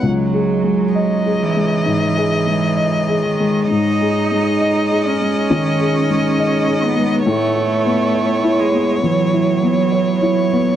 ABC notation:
X:1
M:4/4
L:1/8
Q:1/4=67
K:C#m
V:1 name="Violin"
z2 d6 | d8 | c8 |]
V:2 name="Harmonium"
[G,Dc]8 | [G,Dc]8 | [B,Ec]8 |]
V:3 name="Upright piano"
(3C,, G G, (3d G G, (3G,, G G, (3d G G, | (3G,, G G, (3d G G, (3D, G G, (3d G G, | (3A,, E B, (3c E B, (3E, E B, (3c E B, |]
V:4 name="Cello" clef=bass
F,3 E,4 D, | D3 C4 B, | A,3 G, F,4 |]